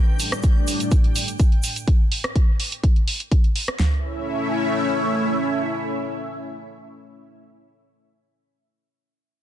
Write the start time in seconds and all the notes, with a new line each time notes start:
Already playing: A2 G3 A3 D4 A4 D5
0.20 open hi-hat, shaker
0.32 cross-stick, closed hi-hat, shaker
0.43 kick, closed hi-hat, shaker
0.67 open hi-hat, shaker
0.80 closed hi-hat, shaker
0.91 kick, closed hi-hat, shaker
1.04 closed hi-hat
1.16 open hi-hat, shaker
1.27 closed hi-hat, shaker
1.39 kick, closed hi-hat, shaker
1.52 closed hi-hat
1.63 open hi-hat, shaker
1.76 closed hi-hat, shaker
1.88 kick, closed hi-hat
2.12 open hi-hat
2.24 cross-stick, closed hi-hat
2.36 kick, closed hi-hat
2.60 open hi-hat
2.72 closed hi-hat
2.84 kick, closed hi-hat
2.96 closed hi-hat
3.08 open hi-hat
3.20 closed hi-hat
3.32 kick, closed hi-hat
3.44 closed hi-hat
3.56 open hi-hat
3.68 cross-stick, closed hi-hat
3.79 A3 C#4 E4 C#5 E5, snare, floor tom